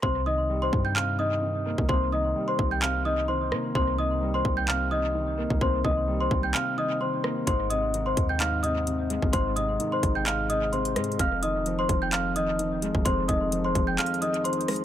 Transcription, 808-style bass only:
\new Staff \with { instrumentName = "808-style bass" } { \clef bass \time 4/4 \key c \minor \tempo 4 = 129 c,4. g,2~ g,16 c,16 | c,4 r8 c,2 c8 | c,4. c,2~ c,16 c,16 | c,8 c,4 c,8 r2 |
aes,,4. ees,2~ ees,16 aes,,16 | aes,,4 r8 aes,,2 aes,8 | f,,4. f,,2~ f,,16 f,,16 | f,,8 f,,4 f,,8 r2 | }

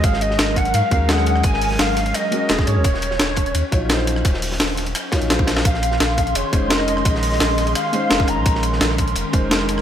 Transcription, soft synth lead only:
\new Staff \with { instrumentName = "Soft synth lead" } { \time 4/4 \key bes \minor \tempo 4 = 171 f''8 ees''4 ges''8 f''4 ges''4 | aes''4 f''4 ees''4. des''8~ | des''2.~ des''8 r8 | r1 |
f''2 des''4 ees''4 | ees''2 f''4. bes''8~ | bes''8 r2. r8 | }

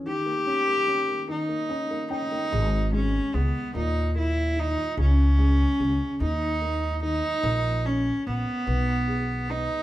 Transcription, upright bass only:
\new Staff \with { instrumentName = "Upright bass" } { \clef bass \time 6/8 \key gis \minor \tempo 4. = 49 r2. | gis,,4 cis,16 r16 dis,4. | cis,4 cis,16 r16 dis,4. | ais,,4 ais,,16 r16 b,,4. | }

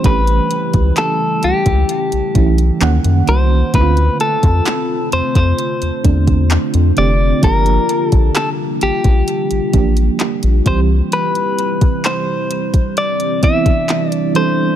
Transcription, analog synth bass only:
\new Staff \with { instrumentName = "Analog synth bass" } { \clef bass \time 4/4 \key c \major \tempo 4 = 65 a,,8 r16 cis,16 r8 cis,16 cis,16 r16 b,,16 b,,8 ees,16 ges,16 c,8 | d,8 r16 f,16 r8 f,16 f,16 r16 e,16 e,8. f,16 f,,8 | g,,8 r16 bes,,16 r8 bes,,16 bes,,16 r16 a,,16 a,,8 r16 bes,,16 c,8 | r1 | }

